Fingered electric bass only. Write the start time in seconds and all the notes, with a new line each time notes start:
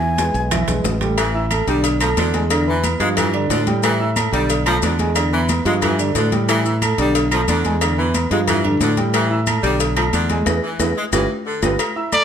Already playing: E2
0.34 B1
0.68 B1
0.84 A1
1.67 B1
2.17 E2
3.00 G2
3.50 A2
4.32 B1
4.82 E2
5.65 G2
6.15 A2
6.98 B1
7.48 E2
8.31 G2
8.81 A2
9.63 B1
10.13 E2
10.46 E2
10.80 E2
11.13 G1
11.63 G1